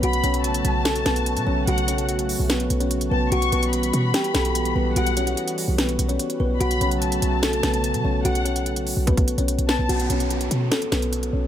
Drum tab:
HH |xxxxxxx-xxxxxx--|xxxxxxo-xxxxxx--|xxxxxxx-xxxxxx--|xxxxxxo-xxxxxx--|
SD |--------o-o-----|--------o-------|--------o-o-----|--------o-------|
BD |----------------|----------------|----------------|----------------|

HH |xxxxxxx-xxxxxx--|xxxxxxo-xxxxxx--|xxxxxxx-xxxxxx--|
SD |--------o-o-----|--------------o-|--------o-o-----|
BD |----------------|--------oo------|----------------|